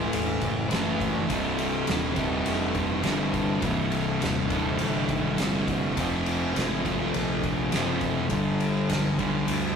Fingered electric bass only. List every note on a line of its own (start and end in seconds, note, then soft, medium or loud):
0.00 0.11 C#1 medium
0.13 0.41 E1 medium
0.42 0.70 F#1 medium
0.71 1.28 F#1 medium
1.30 1.86 C1 medium
1.88 2.45 D#1 medium
2.47 3.03 F1 loud
3.06 3.62 G1 loud
3.63 4.20 C1 medium
4.22 4.79 D#1 medium
4.80 5.08 G1 loud
5.09 5.38 G#1 medium
5.40 5.96 G1 medium
5.97 6.54 F1 loud
6.56 7.13 G#1 medium
7.15 7.72 A#1 loud
7.74 8.30 F#1 medium
8.31 8.88 G1 medium
8.90 9.46 B1 medium
9.49 9.76 D2 loud